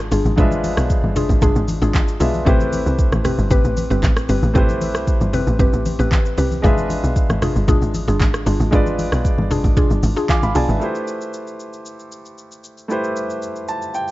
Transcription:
Already playing: G#1 G#3 D4 F4 B4 E5
0.12 G1 D4 F4 G#4, open hi-hat, shaker
0.25 G#1, high conga, shaker
0.36 G#1 F3 D4 F4 G#4 B4, kick, low conga, shaker
0.40 G#3 E5
0.51 high conga, shaker
0.64 open hi-hat, high conga, shaker
0.77 B1, cross-stick, shaker
0.90 kick, shaker
1.04 G1, high conga
1.16 D4 F4 G#4, open hi-hat, low conga, shaker
1.29 G#1, kick, shaker
1.42 G1 D4 F4 G#4, kick, low conga, shaker
1.56 G#1, high conga, shaker
1.68 open hi-hat, high conga, shaker
1.82 G#1 D4 F4 G#4, shaker
1.94 kick, clap, high conga, shaker
2.08 shaker
2.20 B1 G#3 D4 F4 G#4 B4 E5, open hi-hat, shaker
2.34 high conga, shaker
2.45 A1 A3 C4 E4 G4 B4, kick, low conga, shaker
2.49 C5
2.60 high conga, shaker
2.73 open hi-hat, high conga, shaker
2.86 C2, shaker
2.99 kick, shaker
3.12 A1, cross-stick, high conga, shaker
3.25 C4 G4 B4, cross-stick, open hi-hat, low conga, shaker
3.38 G1, shaker
3.51 A1 C4 G4 B4, kick, low conga, shaker
3.65 A1, shaker
3.77 open hi-hat, high conga, shaker
3.90 G1 C4 G4 B4, shaker
4.03 A1, kick, clap, high conga, shaker
4.17 cross-stick, shaker
4.29 G1 C4 G4 B4, open hi-hat, shaker
4.43 A1, high conga, shaker
4.54 A1 A3 C4 E4 G4 B4, kick, low conga, shaker
4.58 C5
4.69 high conga, shaker
4.81 open hi-hat, high conga, shaker
4.95 C2, cross-stick, shaker
5.07 kick, shaker
5.21 G1, high conga, shaker
5.33 C4 G4 B4, open hi-hat, low conga, shaker
5.47 A1, shaker
5.59 G1 C4 G4 B4, kick, low conga, shaker
5.73 A1, shaker
5.86 open hi-hat, high conga, shaker
5.99 A1 C4 G4 B4, shaker
6.12 kick, clap, high conga, shaker
6.25 shaker
6.38 C2 C4 G4 B4, open hi-hat, shaker
6.51 high conga, shaker
6.62 G#1 G#3 D4 F4 G#4 B4, kick, low conga, shaker
6.66 E5
6.78 high conga, shaker
6.90 open hi-hat, high conga, shaker
7.04 B1, shaker
7.16 kick, shaker
7.30 G#1, cross-stick, high conga, shaker
7.42 D4 F4 G#4, cross-stick, open hi-hat, low conga, shaker
7.56 G1, shaker
7.68 G#1 D4 F4 G#4, kick, low conga, shaker
7.82 G#1, shaker
7.94 open hi-hat, high conga, shaker
8.08 G1 D4 F4 G#4, shaker
8.20 G#1, kick, clap, high conga, shaker
8.34 cross-stick, shaker
8.46 G1 D4 F4 G#4, open hi-hat, shaker
8.60 G#1, high conga, shaker
8.71 G#1 G#3 D4 F4 G#4 B4, kick, shaker
8.75 D5
8.86 high conga, shaker
8.99 open hi-hat, high conga, shaker
9.12 B1, cross-stick, shaker
9.25 kick, shaker
9.38 G1, high conga
9.51 D4 F4 G#4, open hi-hat, low conga, shaker
9.64 G#1, kick, shaker
9.77 D4 F4 G#4, kick, low conga, shaker
9.91 G1, high conga, shaker
10.03 G#1, open hi-hat, high conga, shaker
10.16 D4 F4 G#4, shaker
10.29 F5 G#5 D6, kick, clap, high conga, shaker
10.43 G#1 F5 B5, shaker
10.55 B1 D4 F4 G#4 D5 G#5 A5, open hi-hat, shaker
10.69 G#1 B4 E5, high conga, shaker
10.79 A3 E4 G4 B4, shaker
10.84 C5
10.95 shaker
11.08 shaker
11.21 shaker
11.34 shaker
11.47 shaker
11.60 shaker
11.73 shaker
11.86 shaker
11.99 shaker
12.12 shaker
12.26 shaker
12.38 shaker
12.52 shaker
12.64 shaker
12.78 shaker
12.88 A3 E4 G4 B4, shaker
12.92 C5
13.04 shaker
13.16 shaker
13.30 shaker
13.42 shaker
13.56 shaker
13.68 A5, shaker
13.82 shaker
13.94 G5, shaker
14.08 shaker

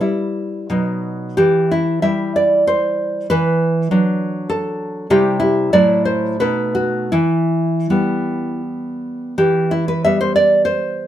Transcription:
Already playing: B4
0.01 G3 E4
0.70 B2 F#3 D#4
1.37 E3 G4
1.71 E4
2.02 G3 E4 E5
2.36 D5
2.67 C5
3.30 E3 B4
3.91 F#3 D4
4.50 A4
5.10 C3 G3 E4 G4
5.40 E4
5.73 A2 F#3 E4 D5
6.05 C5
6.40 B2 A3 D#4 B4
6.75 F#4
7.12 E3 E4
7.90 G3 B3
9.38 E3 G4
9.71 E4
9.88 B4
10.05 G3 B3 E5
10.21 C5
10.36 D5
10.65 C5

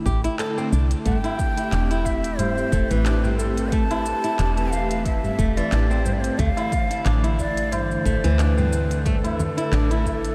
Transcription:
Already playing: D3 A3 E4
0.06 A1 G4, kick, cabasa
0.24 E4, closed hi-hat, cabasa
0.39 A4, clap, closed hi-hat, cabasa
0.58 C4, cabasa
0.72 C2 D4, cabasa
0.91 closed hi-hat, cabasa
1.05 A1 A3 C4 G4 G5, kick, closed hi-hat, tabla ge, cabasa
1.24 E4, closed hi-hat, tabla na, cabasa
1.39 kick, tabla tin, cabasa
1.57 E4, closed hi-hat, cabasa
1.72 E1 D4, clap, closed hi-hat, cabasa
1.91 E4, closed hi-hat, cabasa
2.05 E5, kick, tabla tin, cabasa
2.24 closed hi-hat, cabasa
2.38 C5, closed hi-hat, tabla na, tabla ge, cabasa
2.58 cabasa
2.72 E1 A3, kick, cabasa
2.91 A1 E3 B4, closed hi-hat, cabasa
3.05 D4, clap, closed hi-hat, tabla tin, cabasa
3.24 C4, tabla ge, cabasa
3.39 A4, tabla tin, cabasa
3.57 closed hi-hat, cabasa
3.72 A3 A5, kick, closed hi-hat, cabasa
3.90 E4, closed hi-hat, tabla na, cabasa
4.05 tabla tin, cabasa
4.24 E4, closed hi-hat, tabla tin, cabasa
4.39 E1 D4, clap, closed hi-hat, cabasa
4.57 E3, closed hi-hat, cabasa
4.72 F5, tabla tin, cabasa
4.91 closed hi-hat, cabasa
5.05 E5, kick, closed hi-hat, cabasa
5.24 tabla ge, cabasa
5.39 E1 A3, kick, cabasa
5.57 E3 D5, closed hi-hat, tabla na, cabasa
5.72 A1 D4, clap, closed hi-hat, cabasa
5.90 C4, cabasa
6.05 C5, tabla ge, cabasa
6.13 D5
6.20 C5, closed hi-hat, cabasa
6.38 D2 D3 E3 A3 F5, kick, closed hi-hat, tabla ge, cabasa
6.57 E4, closed hi-hat, tabla na, cabasa
6.72 kick, tabla tin, cabasa
6.90 E4, closed hi-hat, cabasa
7.05 A1 D4, clap, closed hi-hat, cabasa
7.24 E4, closed hi-hat, cabasa
7.39 D5, kick, tabla tin, cabasa
7.57 closed hi-hat, cabasa
7.72 C5, closed hi-hat, tabla na, tabla ge, cabasa
7.91 cabasa
8.05 A1 A3, kick, cabasa
8.24 D2 E3, closed hi-hat, cabasa
8.39 D4 B4, clap, closed hi-hat, tabla tin, cabasa
8.57 C4, tabla ge, cabasa
8.73 tabla tin, cabasa
8.91 closed hi-hat, cabasa
9.05 A3 D4 A4, kick, closed hi-hat, tabla ge, cabasa
9.24 E4, closed hi-hat, tabla na, cabasa
9.39 tabla tin, low conga, cabasa
9.57 E4, closed hi-hat, tabla tin, cabasa
9.72 A1 D4, clap, closed hi-hat, cabasa
9.90 E4, closed hi-hat, cabasa
10.05 kick, tabla tin, cabasa
10.25 closed hi-hat, cabasa

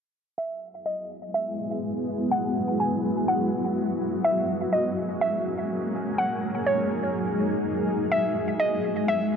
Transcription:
0.38 F#3 G#3 B3 E4 G#4 E5
0.86 D#5
1.34 E5
2.31 F#4 F#5
2.80 G#5
3.28 F#5
4.24 G#3 A#3 C#4 G#4 E5
4.73 D#5
5.21 E5
6.18 D#4 F#5
6.67 C#5
8.12 B3 E4 E5
8.60 D#5
9.08 E5

